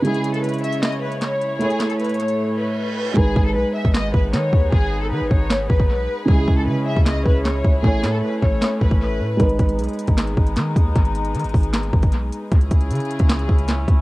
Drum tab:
HH |x-x-x-x-xxxxx-x-x-x---x-x---x---|x-x-x-x-xxxxx-x-----------------|--------------------------------|--------------------------------|
CP |----------------x-------x-------|----x---------------------------|----------------x-------x-------|----------------x---------------|
SD |----------------o-------o-------|----o---------------------------|----------------o-------o-------|----------------o---------------|
BD |--------------------------------|--------------------------------|o---o---------o-----o-------o---|o-----------o-------o-o---------|

HH |--------------------------------|--------------------------------|x-x-x-x-xxxxx-x-x-x---x-x---x---|x-x-x-x-xxxxo-x-x-x---x-x---x---|
CP |----------------x-------x-------|----x-----------x---------------|----------------x-------x-------|----------------x---------------|
SD |----------------o-------o-------|----o-----------o---------------|----------------o-------o-------|----------------o---------------|
BD |o---o---------o-----o-------o---|o-----------o-------o-o---------|o---o---------o-----o-------o---|o-----------o-------o-o---------|

HH |x-x-x-x-xxxxx-x-x-x---x-x---x---|
CP |----------------x-------x-------|
SD |----------------o-------o-------|
BD |o---o---------o-----o-------o---|